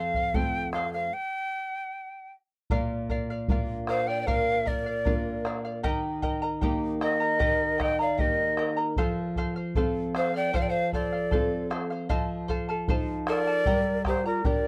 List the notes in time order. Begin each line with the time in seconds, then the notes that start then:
Already playing: F2 A4 C5 F5
0.14 C5 F5, bombo low
0.34 A3 C4 F4 A4 C5 F5 G5, bombo low
0.72 A4 C5 F5, bombo rim
0.93 C5 F5
1.13 G5
2.70 A#2 A#4 D5 F5, bombo low
3.09 A#4 D5 F5, bombo low
3.30 D5 F5
3.48 A#3 D4 F4 A#4 D5 F5, bombo low
3.87 A#4 C5 D5 F5, bombo rim
4.07 D5 F5 G5
4.20 D5 G5
4.27 A#2 A#4 D5 F5, bombo low
4.66 A#4 D5 F5, bombo low
4.86 D5 F5
5.05 A#3 D4 F4 A#4 D5 F5, bombo low
5.45 A#4 D5 F5, bombo rim
5.65 D5 F5
5.83 D#3 G4 A#4 D#5 G5 A#5, bombo low
6.22 A#4 D#5 G5 A#5, bombo low
6.42 A#4 D#5 A#5
6.61 A#3 D#4 G4 A#4 D#5 G5 A#5, bombo low
7.01 A#4 D#5 G5 A#5, bombo rim
7.20 A#4 D#5 A#5
7.39 D#3 G4 A#4 D#5 G5 A#5, bombo low
7.78 A#4 D#5 G5 A#5, bombo rim, bombo low
7.99 A#4 D5 D#5 F5 A#5
8.18 A#3 D#4 G4 A#4 D#5 G5 A#5, bombo low
8.57 A#4 D#5 G5 A#5, bombo rim
8.77 A#4 D#5 A#5
8.96 F3 A4 C5 F5, bombo low
9.36 A4 C5 F5, bombo low
9.56 C5 F5
9.75 C4 F4 A4 C5 F5, bombo low
10.15 A4 C5 F5, bombo rim
10.34 C5 D5 F5 G5
10.53 F3 A4 C5 F5, bombo low
10.61 D5 G5
10.69 C5 F5
10.93 A4 C5 D5 F5, bombo low
11.12 C5 F5
11.31 C4 F4 A4 C5 F5, bombo low
11.70 A4 C5 F5, bombo rim
11.90 C5 F5
12.09 F3 A4 C5 D#5 F5 A5, bombo low
12.48 A4 C5 F5 A5, bombo low
12.69 A4 F5 A5
12.88 D#4 F4 A4 C5 F5 A5, bombo low
13.27 A4 A#4 C5 D5 F5 A5, bombo rim
13.47 A4 F5 A5
13.66 G3 G4 A#4 D5 G5 A#5, bombo low
14.04 G4 A#4 C5 D5 G5 A#5, bombo rim, bombo low
14.25 F4 A#4 D5 A#5
14.44 D4 G4 A#4 D5 G5 A#5, bombo low